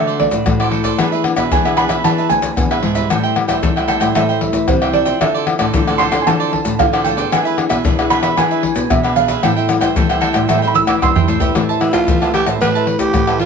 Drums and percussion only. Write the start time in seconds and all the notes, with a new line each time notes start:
0.08 pandeiro, shaker
0.20 pandeiro, surdo
0.31 pandeiro, shaker, surdo
0.46 pandeiro, tamborim, shaker, surdo
0.60 pandeiro, tamborim, shaker
0.71 pandeiro
0.84 pandeiro, shaker, surdo
0.99 pandeiro, tamborim, shaker, surdo
1.13 pandeiro, shaker
1.24 pandeiro, tamborim
1.36 pandeiro, tamborim, shaker, surdo
1.51 pandeiro, shaker, surdo
1.66 pandeiro, tamborim, shaker
1.77 pandeiro, tamborim
1.89 pandeiro, tamborim, shaker, surdo
2.04 pandeiro, tamborim, shaker, surdo
2.18 pandeiro, shaker
2.30 pandeiro, shaker, surdo
2.42 pandeiro, shaker, surdo
2.57 pandeiro, tamborim, shaker, surdo
2.71 pandeiro, tamborim, shaker
2.83 pandeiro
2.95 pandeiro, shaker, surdo
3.10 pandeiro, tamborim, shaker, surdo
3.24 pandeiro, shaker
3.36 pandeiro, tamborim
3.49 pandeiro, tamborim, shaker, surdo
3.63 pandeiro, shaker, surdo
3.77 pandeiro, tamborim, shaker
3.88 pandeiro, tamborim, shaker
4.01 pandeiro, tamborim, shaker, surdo
4.15 pandeiro, tamborim, shaker, surdo
4.29 pandeiro, shaker
4.41 pandeiro, surdo
4.53 pandeiro, shaker, surdo
4.68 pandeiro, tamborim, shaker, surdo
4.82 pandeiro, tamborim, shaker
4.93 pandeiro
5.06 pandeiro, shaker, surdo
5.21 pandeiro, tamborim, shaker, surdo
5.35 pandeiro, shaker
5.47 pandeiro, tamborim
5.59 pandeiro, tamborim, shaker, surdo
5.74 pandeiro, shaker, surdo
5.87 pandeiro, tamborim, shaker
5.99 pandeiro, tamborim
6.12 pandeiro, tamborim, shaker, surdo
6.27 pandeiro, tamborim, shaker, surdo
6.40 pandeiro, shaker
6.53 pandeiro, surdo
6.65 pandeiro, shaker, surdo
6.79 pandeiro, tamborim, shaker, surdo
6.94 pandeiro, tamborim, shaker
7.05 pandeiro, shaker
7.18 pandeiro, shaker, surdo
7.32 pandeiro, tamborim, shaker, surdo
7.46 pandeiro, shaker
7.58 pandeiro, tamborim
7.70 pandeiro, tamborim, shaker, surdo
7.85 pandeiro, shaker, surdo
7.99 pandeiro, tamborim, shaker
8.10 pandeiro, tamborim, shaker
8.23 pandeiro, tamborim, shaker, surdo
8.37 pandeiro, tamborim, shaker, surdo
8.51 pandeiro, shaker
8.63 pandeiro, surdo
8.76 pandeiro, shaker, surdo
8.90 pandeiro, tamborim, shaker, surdo
9.04 pandeiro, tamborim, shaker
9.16 pandeiro, shaker
9.28 pandeiro, shaker, surdo
9.43 pandeiro, tamborim, shaker, surdo
9.57 pandeiro, shaker
9.69 pandeiro, tamborim, shaker
9.81 pandeiro, tamborim, shaker, surdo
9.96 pandeiro, shaker, surdo
10.10 pandeiro, tamborim, shaker
10.22 pandeiro, tamborim
10.34 pandeiro, tamborim, shaker, surdo
10.49 pandeiro, tamborim, shaker, surdo
10.63 pandeiro, shaker
10.75 pandeiro, shaker, surdo
10.87 pandeiro, tamborim, shaker, surdo
11.02 pandeiro, tamborim, shaker, surdo
11.16 surdo, pandeiro, shaker
11.28 pandeiro, shaker
11.40 pandeiro, shaker, surdo
11.55 pandeiro, tamborim, shaker, surdo
11.69 pandeiro, shaker
11.81 pandeiro, tamborim
11.93 pandeiro, tamborim, shaker, surdo
12.08 pandeiro, shaker, surdo
12.22 pandeiro, tamborim, shaker
12.34 pandeiro, tamborim
12.47 pandeiro, tamborim, shaker, surdo
12.62 pandeiro, tamborim, shaker, surdo
12.75 pandeiro, shaker
12.87 pandeiro
12.99 pandeiro, shaker, surdo
13.14 pandeiro, tamborim, shaker, surdo
13.28 pandeiro, tamborim, shaker
13.39 pandeiro